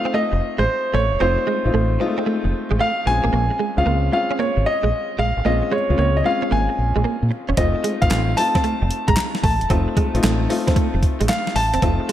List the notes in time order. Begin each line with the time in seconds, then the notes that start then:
Already playing: A3 C4 D#4 F4 F5
0.05 C4
0.14 A3 D#5
0.32 F1, muted clean electric guitar stroke
0.58 A1 G#3 C5
0.94 A1 A3 C#5
1.12 E1
1.20 F1 A3 C4 D#4 F4 C5
1.38 muted clean electric guitar stroke
1.47 G#3
1.64 A1 A3 C4 D#4 F4
1.74 A1 A3
2.00 G#3 C4 D#4 F4, muted clean electric guitar stroke
2.06 A3
2.18 C4
2.26 A3
2.44 F1, muted clean electric guitar stroke
2.71 A1 G#3
2.79 A3 F5
3.06 A#1 G#3 C4 C#4 F4 G#5, muted clean electric guitar stroke
3.24 A1 A#3
3.33 A#1 A#3
3.50 muted clean electric guitar stroke
3.59 G#3
3.77 C#2 G#3 C4 C#4 F4 F5
3.86 C#2 A#3
4.12 G#3 C4 C#4 F4 F5, muted clean electric guitar stroke
4.31 C#4
4.39 A#3 C#5
4.57 G#1, muted clean electric guitar stroke
4.66 D#5
4.83 A#1 G#3
5.19 A#1 G#3 F5
5.37 A1
5.45 A#1 G#3 A#3 C4 C#4 F4 D#5
5.62 muted clean electric guitar stroke
5.72 G#3 C#5
5.89 C#2 G#3 C4 C#4 F4
5.98 C#2 A#3 C#5
6.17 D#5
6.24 G#3 C4 C#4 F4 F5, muted clean electric guitar stroke
6.42 C#4
6.51 G#1 A#3 G#5
6.69 muted clean electric guitar stroke
6.79 A#1
6.96 A#1 G#3
7.04 A#3
7.23 A#2
7.31 muted clean electric guitar stroke
7.49 E1 C#4
7.57 F1 A3 C4 D#4 F4 D#5, kick, closed hi-hat
7.75 muted clean electric guitar stroke
7.84 G#3, closed hi-hat
8.02 A1 A3 C4 D#4 F4 F5, kick, closed hi-hat
8.10 A1 A3, snare, clap, closed hi-hat
8.37 A3 C4 D#4 F4 A5, muted clean electric guitar stroke, open hi-hat
8.55 C4, kick, snare, closed hi-hat
8.64 A3, closed hi-hat
8.82 F1, muted clean electric guitar stroke
8.91 closed hi-hat
9.08 A1 G#3 A#5, kick, closed hi-hat
9.17 snare, clap, closed hi-hat
9.35 snare
9.43 A1 A3 A5, kick, open hi-hat
9.61 E1, closed hi-hat
9.70 F1 A3 C4 D#4 F4, kick, closed hi-hat
9.88 muted clean electric guitar stroke
9.97 G#3, kick, closed hi-hat
10.14 A1 A3 C4 D#4 F4, closed hi-hat
10.23 A1 A3, snare, clap, closed hi-hat
10.49 A3 C4 D#4 F4, muted clean electric guitar stroke, open hi-hat
10.67 C4, kick, snare, closed hi-hat
10.76 A3, kick, closed hi-hat
10.94 F1, muted clean electric guitar stroke
11.03 kick, closed hi-hat
11.21 A1 G#3, closed hi-hat
11.29 A3 F5, snare, clap, closed hi-hat
11.47 snare
11.56 A1 A5, muted clean electric guitar stroke, open hi-hat
11.74 E1 C4, closed hi-hat
11.82 F1 A3 C4 D#4 F4, kick, closed hi-hat
12.00 muted clean electric guitar stroke
12.09 G#3